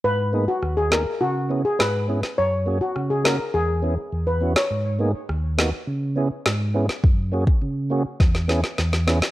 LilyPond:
<<
  \new Staff \with { instrumentName = "Steel pan" } { \time 4/4 \key cis \dorian \tempo 4 = 103 b'16 r8 fis'16 r16 gis'16 ais'16 r16 fis'16 r8 gis'16 b'8. r16 | cis''16 r8 fis'16 r16 gis'16 ais'16 r16 gis'8. r8 b'16 r16 cis''16 | r1 | r1 | }
  \new Staff \with { instrumentName = "Tonewheel organ" } { \time 4/4 \key cis \dorian r8 <ais b dis' gis'>8 r8 <ais b dis' gis'>8 r8 <b cis' e' gis'>8 r8 <b cis' e' gis'>8 | r8 <ais cis' fis' gis'>8 r8 <ais cis' fis' ais'>8 r8 <b cis' e' gis'>8 r8 <b cis' e' fis'>8 | r8 <ais b dis' gis'>8 r8 <ais b dis' fis'>8 r8 <b cis' e' gis'>8 r8 <b cis' e' gis'>8 | r8 <ais cis' fis' gis'>8 r8 <ais cis' fis' gis'>8 r8 <b cis' e' gis'>8 r8 <b cis' e' gis'>8 | }
  \new Staff \with { instrumentName = "Tonewheel organ" } { \clef bass \time 4/4 \key cis \dorian gis,4 dis,4 cis4 gis,4 | fis,4 cis4 e,4 e,4 | gis,4 dis,4 cis4 gis,4 | fis,4 cis4 e,4 e,4 | }
  \new DrumStaff \with { instrumentName = "Drums" } \drummode { \time 4/4 r4 ss8 <ss sn>8 r4 <ss sn>8. sn16 | r4 ss8 <ss sn>8 r4 r8. <ss sn>16 | r4 ss8 <ss sn>8 r4 <ss sn>8. sn16 | bd8. bd16 r4 <bd sn>16 sn16 sn16 sn16 sn16 sn16 sn16 sn16 | }
>>